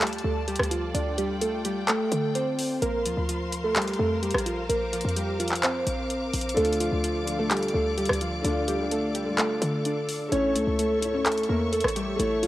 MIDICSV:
0, 0, Header, 1, 6, 480
1, 0, Start_track
1, 0, Key_signature, -1, "minor"
1, 0, Tempo, 468750
1, 969, Time_signature, 4, 2, 24, 8
1, 12772, End_track
2, 0, Start_track
2, 0, Title_t, "String section"
2, 0, Program_c, 0, 48
2, 0, Note_on_c, 0, 65, 81
2, 0, Note_on_c, 0, 69, 73
2, 0, Note_on_c, 0, 74, 76
2, 0, Note_on_c, 0, 81, 89
2, 949, Note_off_c, 0, 81, 0
2, 968, Note_on_c, 0, 79, 93
2, 2850, Note_off_c, 0, 65, 0
2, 2850, Note_off_c, 0, 69, 0
2, 2850, Note_off_c, 0, 74, 0
2, 2869, Note_off_c, 0, 79, 0
2, 2887, Note_on_c, 0, 72, 78
2, 2888, Note_on_c, 0, 70, 87
2, 2888, Note_on_c, 0, 77, 74
2, 2888, Note_on_c, 0, 84, 90
2, 4789, Note_off_c, 0, 84, 0
2, 4808, Note_on_c, 0, 86, 92
2, 6689, Note_off_c, 0, 70, 0
2, 6689, Note_off_c, 0, 72, 0
2, 6728, Note_on_c, 0, 69, 83
2, 6728, Note_on_c, 0, 74, 78
2, 10527, Note_off_c, 0, 77, 0
2, 10527, Note_off_c, 0, 86, 0
2, 10530, Note_off_c, 0, 74, 0
2, 10568, Note_on_c, 0, 73, 76
2, 10568, Note_on_c, 0, 76, 75
2, 10568, Note_on_c, 0, 85, 92
2, 12772, Note_off_c, 0, 69, 0
2, 12772, Note_off_c, 0, 73, 0
2, 12772, Note_off_c, 0, 76, 0
2, 12772, Note_off_c, 0, 85, 0
2, 12772, End_track
3, 0, Start_track
3, 0, Title_t, "Synth keys"
3, 0, Program_c, 1, 88
3, 8, Note_on_c, 1, 67, 90
3, 16, Note_on_c, 1, 55, 71
3, 189, Note_off_c, 1, 67, 0
3, 194, Note_off_c, 1, 55, 0
3, 247, Note_on_c, 1, 69, 72
3, 255, Note_on_c, 1, 57, 60
3, 429, Note_off_c, 1, 69, 0
3, 434, Note_off_c, 1, 57, 0
3, 489, Note_on_c, 1, 67, 82
3, 497, Note_on_c, 1, 55, 62
3, 670, Note_off_c, 1, 67, 0
3, 675, Note_off_c, 1, 55, 0
3, 729, Note_on_c, 1, 65, 74
3, 737, Note_on_c, 1, 53, 59
3, 910, Note_off_c, 1, 65, 0
3, 915, Note_off_c, 1, 53, 0
3, 968, Note_on_c, 1, 74, 87
3, 977, Note_on_c, 1, 62, 75
3, 1149, Note_off_c, 1, 74, 0
3, 1155, Note_off_c, 1, 62, 0
3, 1208, Note_on_c, 1, 67, 81
3, 1217, Note_on_c, 1, 55, 68
3, 1389, Note_off_c, 1, 67, 0
3, 1394, Note_off_c, 1, 55, 0
3, 1448, Note_on_c, 1, 69, 79
3, 1456, Note_on_c, 1, 57, 66
3, 1629, Note_off_c, 1, 69, 0
3, 1634, Note_off_c, 1, 57, 0
3, 1689, Note_on_c, 1, 67, 80
3, 1697, Note_on_c, 1, 55, 62
3, 1870, Note_off_c, 1, 67, 0
3, 1875, Note_off_c, 1, 55, 0
3, 1928, Note_on_c, 1, 69, 88
3, 1937, Note_on_c, 1, 57, 66
3, 2380, Note_off_c, 1, 69, 0
3, 2384, Note_off_c, 1, 57, 0
3, 2407, Note_on_c, 1, 72, 87
3, 2416, Note_on_c, 1, 60, 64
3, 2859, Note_off_c, 1, 72, 0
3, 2863, Note_off_c, 1, 60, 0
3, 2889, Note_on_c, 1, 70, 105
3, 2897, Note_on_c, 1, 58, 82
3, 3070, Note_off_c, 1, 70, 0
3, 3075, Note_off_c, 1, 58, 0
3, 3128, Note_on_c, 1, 65, 83
3, 3136, Note_on_c, 1, 53, 66
3, 3309, Note_off_c, 1, 65, 0
3, 3314, Note_off_c, 1, 53, 0
3, 3367, Note_on_c, 1, 65, 82
3, 3376, Note_on_c, 1, 53, 61
3, 3706, Note_off_c, 1, 65, 0
3, 3711, Note_off_c, 1, 53, 0
3, 3729, Note_on_c, 1, 69, 72
3, 3737, Note_on_c, 1, 57, 58
3, 3819, Note_off_c, 1, 69, 0
3, 3824, Note_off_c, 1, 57, 0
3, 3848, Note_on_c, 1, 67, 79
3, 3856, Note_on_c, 1, 55, 66
3, 4029, Note_off_c, 1, 67, 0
3, 4034, Note_off_c, 1, 55, 0
3, 4087, Note_on_c, 1, 69, 88
3, 4095, Note_on_c, 1, 57, 65
3, 4268, Note_off_c, 1, 69, 0
3, 4274, Note_off_c, 1, 57, 0
3, 4328, Note_on_c, 1, 67, 80
3, 4336, Note_on_c, 1, 55, 65
3, 4509, Note_off_c, 1, 67, 0
3, 4514, Note_off_c, 1, 55, 0
3, 4569, Note_on_c, 1, 65, 84
3, 4577, Note_on_c, 1, 53, 68
3, 4750, Note_off_c, 1, 65, 0
3, 4755, Note_off_c, 1, 53, 0
3, 4807, Note_on_c, 1, 70, 90
3, 4815, Note_on_c, 1, 58, 74
3, 4989, Note_off_c, 1, 70, 0
3, 4994, Note_off_c, 1, 58, 0
3, 5046, Note_on_c, 1, 65, 84
3, 5054, Note_on_c, 1, 53, 64
3, 5228, Note_off_c, 1, 65, 0
3, 5233, Note_off_c, 1, 53, 0
3, 5287, Note_on_c, 1, 67, 89
3, 5295, Note_on_c, 1, 55, 66
3, 5468, Note_off_c, 1, 67, 0
3, 5474, Note_off_c, 1, 55, 0
3, 5528, Note_on_c, 1, 65, 82
3, 5536, Note_on_c, 1, 53, 64
3, 5709, Note_off_c, 1, 65, 0
3, 5714, Note_off_c, 1, 53, 0
3, 5767, Note_on_c, 1, 72, 79
3, 5775, Note_on_c, 1, 60, 59
3, 6687, Note_off_c, 1, 72, 0
3, 6691, Note_off_c, 1, 60, 0
3, 6728, Note_on_c, 1, 69, 96
3, 6737, Note_on_c, 1, 57, 77
3, 6909, Note_off_c, 1, 69, 0
3, 6914, Note_off_c, 1, 57, 0
3, 6968, Note_on_c, 1, 65, 89
3, 6976, Note_on_c, 1, 53, 65
3, 7149, Note_off_c, 1, 65, 0
3, 7154, Note_off_c, 1, 53, 0
3, 7208, Note_on_c, 1, 65, 81
3, 7217, Note_on_c, 1, 53, 73
3, 7547, Note_off_c, 1, 65, 0
3, 7551, Note_off_c, 1, 53, 0
3, 7568, Note_on_c, 1, 69, 80
3, 7577, Note_on_c, 1, 57, 63
3, 7659, Note_off_c, 1, 69, 0
3, 7664, Note_off_c, 1, 57, 0
3, 7688, Note_on_c, 1, 67, 87
3, 7696, Note_on_c, 1, 55, 71
3, 7869, Note_off_c, 1, 67, 0
3, 7874, Note_off_c, 1, 55, 0
3, 7929, Note_on_c, 1, 69, 78
3, 7938, Note_on_c, 1, 57, 57
3, 8110, Note_off_c, 1, 69, 0
3, 8115, Note_off_c, 1, 57, 0
3, 8168, Note_on_c, 1, 67, 81
3, 8176, Note_on_c, 1, 55, 64
3, 8349, Note_off_c, 1, 67, 0
3, 8354, Note_off_c, 1, 55, 0
3, 8409, Note_on_c, 1, 65, 79
3, 8416, Note_on_c, 1, 53, 59
3, 8590, Note_off_c, 1, 65, 0
3, 8594, Note_off_c, 1, 53, 0
3, 8648, Note_on_c, 1, 74, 92
3, 8657, Note_on_c, 1, 62, 73
3, 8829, Note_off_c, 1, 74, 0
3, 8834, Note_off_c, 1, 62, 0
3, 8889, Note_on_c, 1, 67, 84
3, 8897, Note_on_c, 1, 55, 66
3, 9070, Note_off_c, 1, 67, 0
3, 9075, Note_off_c, 1, 55, 0
3, 9129, Note_on_c, 1, 69, 81
3, 9137, Note_on_c, 1, 57, 69
3, 9310, Note_off_c, 1, 69, 0
3, 9315, Note_off_c, 1, 57, 0
3, 9367, Note_on_c, 1, 67, 75
3, 9376, Note_on_c, 1, 55, 59
3, 9549, Note_off_c, 1, 67, 0
3, 9554, Note_off_c, 1, 55, 0
3, 9606, Note_on_c, 1, 69, 79
3, 9615, Note_on_c, 1, 57, 66
3, 10059, Note_off_c, 1, 69, 0
3, 10063, Note_off_c, 1, 57, 0
3, 10088, Note_on_c, 1, 74, 80
3, 10096, Note_on_c, 1, 62, 68
3, 10539, Note_off_c, 1, 74, 0
3, 10544, Note_off_c, 1, 62, 0
3, 10567, Note_on_c, 1, 73, 113
3, 10576, Note_on_c, 1, 61, 86
3, 10749, Note_off_c, 1, 73, 0
3, 10754, Note_off_c, 1, 61, 0
3, 10808, Note_on_c, 1, 69, 82
3, 10816, Note_on_c, 1, 57, 65
3, 10989, Note_off_c, 1, 69, 0
3, 10994, Note_off_c, 1, 57, 0
3, 11047, Note_on_c, 1, 69, 89
3, 11056, Note_on_c, 1, 57, 63
3, 11386, Note_off_c, 1, 69, 0
3, 11391, Note_off_c, 1, 57, 0
3, 11405, Note_on_c, 1, 73, 74
3, 11414, Note_on_c, 1, 61, 59
3, 11497, Note_off_c, 1, 73, 0
3, 11502, Note_off_c, 1, 61, 0
3, 11527, Note_on_c, 1, 69, 87
3, 11535, Note_on_c, 1, 57, 64
3, 11708, Note_off_c, 1, 69, 0
3, 11713, Note_off_c, 1, 57, 0
3, 11766, Note_on_c, 1, 70, 92
3, 11775, Note_on_c, 1, 58, 68
3, 11948, Note_off_c, 1, 70, 0
3, 11953, Note_off_c, 1, 58, 0
3, 12007, Note_on_c, 1, 69, 82
3, 12016, Note_on_c, 1, 57, 68
3, 12188, Note_off_c, 1, 69, 0
3, 12194, Note_off_c, 1, 57, 0
3, 12247, Note_on_c, 1, 67, 87
3, 12255, Note_on_c, 1, 55, 67
3, 12429, Note_off_c, 1, 67, 0
3, 12434, Note_off_c, 1, 55, 0
3, 12487, Note_on_c, 1, 69, 93
3, 12495, Note_on_c, 1, 57, 65
3, 12669, Note_off_c, 1, 69, 0
3, 12673, Note_off_c, 1, 57, 0
3, 12726, Note_on_c, 1, 65, 87
3, 12735, Note_on_c, 1, 53, 64
3, 12772, Note_off_c, 1, 53, 0
3, 12772, Note_off_c, 1, 65, 0
3, 12772, End_track
4, 0, Start_track
4, 0, Title_t, "Grand piano"
4, 0, Program_c, 2, 0
4, 6700, Note_on_c, 2, 50, 102
4, 6729, Note_on_c, 2, 57, 87
4, 6757, Note_on_c, 2, 65, 116
4, 6900, Control_c, 2, 64, 127
4, 7249, Note_off_c, 2, 50, 0
4, 7264, Note_off_c, 2, 57, 0
4, 7278, Note_off_c, 2, 65, 0
4, 7414, Note_on_c, 2, 50, 80
4, 7442, Note_on_c, 2, 57, 70
4, 7471, Note_on_c, 2, 65, 85
4, 7520, Note_off_c, 2, 50, 0
4, 7534, Note_off_c, 2, 57, 0
4, 7539, Note_on_c, 2, 50, 69
4, 7549, Note_off_c, 2, 65, 0
4, 7568, Note_on_c, 2, 57, 65
4, 7596, Note_on_c, 2, 65, 82
4, 8267, Note_off_c, 2, 50, 0
4, 8282, Note_off_c, 2, 57, 0
4, 8296, Note_off_c, 2, 65, 0
4, 8620, Note_on_c, 2, 50, 98
4, 8648, Note_on_c, 2, 57, 91
4, 8677, Note_on_c, 2, 65, 106
4, 8902, Note_off_c, 2, 50, 0
4, 8916, Note_off_c, 2, 57, 0
4, 8930, Note_off_c, 2, 65, 0
4, 8980, Note_on_c, 2, 50, 86
4, 9009, Note_on_c, 2, 57, 66
4, 9037, Note_on_c, 2, 62, 81
4, 9351, Note_off_c, 2, 50, 0
4, 9365, Note_off_c, 2, 57, 0
4, 9379, Note_off_c, 2, 62, 0
4, 9458, Note_on_c, 2, 50, 74
4, 9487, Note_on_c, 2, 57, 65
4, 9516, Note_on_c, 2, 65, 78
4, 10187, Note_off_c, 2, 50, 0
4, 10201, Note_off_c, 2, 57, 0
4, 10216, Note_off_c, 2, 65, 0
4, 10537, Note_on_c, 2, 57, 95
4, 10565, Note_on_c, 2, 64, 88
4, 10583, Control_c, 2, 64, 0
4, 10594, Note_on_c, 2, 73, 112
4, 10793, Control_c, 2, 64, 127
4, 11088, Note_off_c, 2, 57, 0
4, 11102, Note_off_c, 2, 64, 0
4, 11116, Note_off_c, 2, 73, 0
4, 11254, Note_on_c, 2, 57, 81
4, 11282, Note_on_c, 2, 64, 70
4, 11311, Note_on_c, 2, 73, 88
4, 11360, Note_off_c, 2, 57, 0
4, 11375, Note_off_c, 2, 64, 0
4, 11380, Note_on_c, 2, 57, 77
4, 11389, Note_off_c, 2, 73, 0
4, 11409, Note_on_c, 2, 64, 70
4, 11437, Note_on_c, 2, 73, 79
4, 12108, Note_off_c, 2, 57, 0
4, 12122, Note_off_c, 2, 64, 0
4, 12136, Note_off_c, 2, 73, 0
4, 12455, Note_on_c, 2, 57, 105
4, 12483, Note_on_c, 2, 64, 94
4, 12512, Note_on_c, 2, 73, 108
4, 12739, Note_off_c, 2, 57, 0
4, 12753, Note_off_c, 2, 64, 0
4, 12768, Note_off_c, 2, 73, 0
4, 12772, End_track
5, 0, Start_track
5, 0, Title_t, "808-style bass"
5, 0, Program_c, 3, 38
5, 0, Note_on_c, 3, 38, 101
5, 215, Note_off_c, 3, 38, 0
5, 248, Note_on_c, 3, 38, 107
5, 594, Note_off_c, 3, 38, 0
5, 608, Note_on_c, 3, 38, 106
5, 954, Note_off_c, 3, 38, 0
5, 968, Note_on_c, 3, 38, 110
5, 2127, Note_off_c, 3, 38, 0
5, 2169, Note_on_c, 3, 50, 108
5, 2860, Note_off_c, 3, 50, 0
5, 2888, Note_on_c, 3, 34, 109
5, 3128, Note_on_c, 3, 38, 103
5, 3143, Note_off_c, 3, 34, 0
5, 3242, Note_off_c, 3, 38, 0
5, 3248, Note_on_c, 3, 38, 104
5, 4055, Note_off_c, 3, 38, 0
5, 4089, Note_on_c, 3, 41, 107
5, 4434, Note_off_c, 3, 41, 0
5, 4448, Note_on_c, 3, 34, 102
5, 4794, Note_off_c, 3, 34, 0
5, 4808, Note_on_c, 3, 34, 110
5, 5154, Note_off_c, 3, 34, 0
5, 5168, Note_on_c, 3, 41, 102
5, 5975, Note_off_c, 3, 41, 0
5, 6008, Note_on_c, 3, 34, 108
5, 6469, Note_off_c, 3, 34, 0
5, 6488, Note_on_c, 3, 34, 109
5, 6719, Note_off_c, 3, 34, 0
5, 6728, Note_on_c, 3, 38, 115
5, 7074, Note_off_c, 3, 38, 0
5, 7088, Note_on_c, 3, 38, 102
5, 7895, Note_off_c, 3, 38, 0
5, 7928, Note_on_c, 3, 38, 109
5, 8274, Note_off_c, 3, 38, 0
5, 8288, Note_on_c, 3, 38, 99
5, 8634, Note_off_c, 3, 38, 0
5, 8648, Note_on_c, 3, 38, 114
5, 9807, Note_off_c, 3, 38, 0
5, 9848, Note_on_c, 3, 50, 110
5, 10539, Note_off_c, 3, 50, 0
5, 10568, Note_on_c, 3, 33, 111
5, 10807, Note_on_c, 3, 37, 101
5, 10823, Note_off_c, 3, 33, 0
5, 10922, Note_off_c, 3, 37, 0
5, 10928, Note_on_c, 3, 37, 99
5, 11735, Note_off_c, 3, 37, 0
5, 11768, Note_on_c, 3, 40, 109
5, 12114, Note_off_c, 3, 40, 0
5, 12128, Note_on_c, 3, 33, 104
5, 12474, Note_off_c, 3, 33, 0
5, 12488, Note_on_c, 3, 33, 118
5, 12772, Note_off_c, 3, 33, 0
5, 12772, End_track
6, 0, Start_track
6, 0, Title_t, "Drums"
6, 8, Note_on_c, 9, 39, 114
6, 8, Note_on_c, 9, 42, 81
6, 68, Note_off_c, 9, 42, 0
6, 68, Note_on_c, 9, 42, 69
6, 111, Note_off_c, 9, 39, 0
6, 128, Note_off_c, 9, 42, 0
6, 128, Note_on_c, 9, 42, 58
6, 188, Note_off_c, 9, 42, 0
6, 188, Note_on_c, 9, 42, 48
6, 290, Note_off_c, 9, 42, 0
6, 488, Note_on_c, 9, 42, 62
6, 568, Note_off_c, 9, 42, 0
6, 568, Note_on_c, 9, 42, 62
6, 607, Note_on_c, 9, 37, 99
6, 648, Note_off_c, 9, 42, 0
6, 648, Note_on_c, 9, 42, 67
6, 710, Note_off_c, 9, 37, 0
6, 728, Note_off_c, 9, 42, 0
6, 728, Note_on_c, 9, 42, 82
6, 830, Note_off_c, 9, 42, 0
6, 968, Note_on_c, 9, 42, 85
6, 1071, Note_off_c, 9, 42, 0
6, 1208, Note_on_c, 9, 42, 81
6, 1311, Note_off_c, 9, 42, 0
6, 1448, Note_on_c, 9, 42, 89
6, 1551, Note_off_c, 9, 42, 0
6, 1688, Note_on_c, 9, 42, 83
6, 1791, Note_off_c, 9, 42, 0
6, 1928, Note_on_c, 9, 39, 110
6, 1928, Note_on_c, 9, 42, 85
6, 2030, Note_off_c, 9, 39, 0
6, 2030, Note_off_c, 9, 42, 0
6, 2168, Note_on_c, 9, 42, 92
6, 2271, Note_off_c, 9, 42, 0
6, 2408, Note_on_c, 9, 42, 77
6, 2511, Note_off_c, 9, 42, 0
6, 2648, Note_on_c, 9, 46, 87
6, 2751, Note_off_c, 9, 46, 0
6, 2889, Note_on_c, 9, 42, 86
6, 2991, Note_off_c, 9, 42, 0
6, 3129, Note_on_c, 9, 42, 83
6, 3231, Note_off_c, 9, 42, 0
6, 3368, Note_on_c, 9, 42, 89
6, 3471, Note_off_c, 9, 42, 0
6, 3608, Note_on_c, 9, 42, 85
6, 3711, Note_off_c, 9, 42, 0
6, 3848, Note_on_c, 9, 39, 112
6, 3848, Note_on_c, 9, 42, 81
6, 3908, Note_off_c, 9, 42, 0
6, 3908, Note_on_c, 9, 42, 70
6, 3950, Note_off_c, 9, 39, 0
6, 3968, Note_off_c, 9, 42, 0
6, 3968, Note_on_c, 9, 42, 58
6, 4028, Note_off_c, 9, 42, 0
6, 4028, Note_on_c, 9, 42, 45
6, 4131, Note_off_c, 9, 42, 0
6, 4328, Note_on_c, 9, 42, 64
6, 4408, Note_off_c, 9, 42, 0
6, 4408, Note_on_c, 9, 42, 63
6, 4448, Note_on_c, 9, 37, 100
6, 4488, Note_off_c, 9, 42, 0
6, 4488, Note_on_c, 9, 42, 65
6, 4550, Note_off_c, 9, 37, 0
6, 4568, Note_off_c, 9, 42, 0
6, 4568, Note_on_c, 9, 42, 79
6, 4670, Note_off_c, 9, 42, 0
6, 4808, Note_on_c, 9, 42, 84
6, 4910, Note_off_c, 9, 42, 0
6, 5048, Note_on_c, 9, 42, 83
6, 5128, Note_off_c, 9, 42, 0
6, 5128, Note_on_c, 9, 42, 65
6, 5209, Note_off_c, 9, 42, 0
6, 5209, Note_on_c, 9, 42, 48
6, 5288, Note_off_c, 9, 42, 0
6, 5288, Note_on_c, 9, 42, 90
6, 5391, Note_off_c, 9, 42, 0
6, 5528, Note_on_c, 9, 42, 70
6, 5608, Note_off_c, 9, 42, 0
6, 5608, Note_on_c, 9, 42, 74
6, 5648, Note_on_c, 9, 39, 66
6, 5688, Note_off_c, 9, 42, 0
6, 5688, Note_on_c, 9, 42, 71
6, 5751, Note_off_c, 9, 39, 0
6, 5768, Note_off_c, 9, 42, 0
6, 5768, Note_on_c, 9, 39, 113
6, 5768, Note_on_c, 9, 42, 84
6, 5870, Note_off_c, 9, 39, 0
6, 5870, Note_off_c, 9, 42, 0
6, 6008, Note_on_c, 9, 42, 91
6, 6110, Note_off_c, 9, 42, 0
6, 6248, Note_on_c, 9, 42, 75
6, 6350, Note_off_c, 9, 42, 0
6, 6487, Note_on_c, 9, 42, 68
6, 6487, Note_on_c, 9, 46, 85
6, 6568, Note_off_c, 9, 42, 0
6, 6568, Note_on_c, 9, 42, 67
6, 6590, Note_off_c, 9, 46, 0
6, 6648, Note_off_c, 9, 42, 0
6, 6648, Note_on_c, 9, 42, 68
6, 6728, Note_off_c, 9, 42, 0
6, 6728, Note_on_c, 9, 42, 67
6, 6808, Note_off_c, 9, 42, 0
6, 6808, Note_on_c, 9, 42, 67
6, 6888, Note_off_c, 9, 42, 0
6, 6888, Note_on_c, 9, 42, 68
6, 6968, Note_off_c, 9, 42, 0
6, 6968, Note_on_c, 9, 42, 85
6, 7070, Note_off_c, 9, 42, 0
6, 7208, Note_on_c, 9, 42, 86
6, 7310, Note_off_c, 9, 42, 0
6, 7448, Note_on_c, 9, 42, 86
6, 7550, Note_off_c, 9, 42, 0
6, 7688, Note_on_c, 9, 39, 114
6, 7688, Note_on_c, 9, 42, 82
6, 7748, Note_off_c, 9, 42, 0
6, 7748, Note_on_c, 9, 42, 66
6, 7790, Note_off_c, 9, 39, 0
6, 7808, Note_off_c, 9, 42, 0
6, 7808, Note_on_c, 9, 42, 59
6, 7868, Note_off_c, 9, 42, 0
6, 7868, Note_on_c, 9, 42, 47
6, 7970, Note_off_c, 9, 42, 0
6, 8168, Note_on_c, 9, 42, 62
6, 8248, Note_off_c, 9, 42, 0
6, 8248, Note_on_c, 9, 42, 63
6, 8288, Note_on_c, 9, 37, 101
6, 8328, Note_off_c, 9, 42, 0
6, 8328, Note_on_c, 9, 42, 63
6, 8390, Note_off_c, 9, 37, 0
6, 8408, Note_off_c, 9, 42, 0
6, 8408, Note_on_c, 9, 42, 78
6, 8511, Note_off_c, 9, 42, 0
6, 8648, Note_on_c, 9, 42, 83
6, 8751, Note_off_c, 9, 42, 0
6, 8888, Note_on_c, 9, 42, 80
6, 8991, Note_off_c, 9, 42, 0
6, 9128, Note_on_c, 9, 42, 87
6, 9231, Note_off_c, 9, 42, 0
6, 9369, Note_on_c, 9, 42, 83
6, 9471, Note_off_c, 9, 42, 0
6, 9608, Note_on_c, 9, 39, 114
6, 9608, Note_on_c, 9, 42, 84
6, 9711, Note_off_c, 9, 39, 0
6, 9711, Note_off_c, 9, 42, 0
6, 9849, Note_on_c, 9, 42, 90
6, 9951, Note_off_c, 9, 42, 0
6, 10088, Note_on_c, 9, 42, 74
6, 10191, Note_off_c, 9, 42, 0
6, 10329, Note_on_c, 9, 46, 83
6, 10431, Note_off_c, 9, 46, 0
6, 10568, Note_on_c, 9, 42, 85
6, 10670, Note_off_c, 9, 42, 0
6, 10808, Note_on_c, 9, 42, 80
6, 10911, Note_off_c, 9, 42, 0
6, 11048, Note_on_c, 9, 42, 90
6, 11151, Note_off_c, 9, 42, 0
6, 11288, Note_on_c, 9, 42, 83
6, 11391, Note_off_c, 9, 42, 0
6, 11528, Note_on_c, 9, 39, 111
6, 11528, Note_on_c, 9, 42, 77
6, 11588, Note_off_c, 9, 42, 0
6, 11588, Note_on_c, 9, 42, 67
6, 11631, Note_off_c, 9, 39, 0
6, 11648, Note_off_c, 9, 42, 0
6, 11648, Note_on_c, 9, 42, 57
6, 11708, Note_off_c, 9, 42, 0
6, 11708, Note_on_c, 9, 42, 46
6, 11811, Note_off_c, 9, 42, 0
6, 12008, Note_on_c, 9, 42, 62
6, 12088, Note_off_c, 9, 42, 0
6, 12088, Note_on_c, 9, 42, 64
6, 12127, Note_on_c, 9, 37, 99
6, 12168, Note_off_c, 9, 42, 0
6, 12168, Note_on_c, 9, 42, 64
6, 12230, Note_off_c, 9, 37, 0
6, 12248, Note_off_c, 9, 42, 0
6, 12248, Note_on_c, 9, 42, 79
6, 12351, Note_off_c, 9, 42, 0
6, 12489, Note_on_c, 9, 42, 84
6, 12591, Note_off_c, 9, 42, 0
6, 12728, Note_on_c, 9, 42, 83
6, 12772, Note_off_c, 9, 42, 0
6, 12772, End_track
0, 0, End_of_file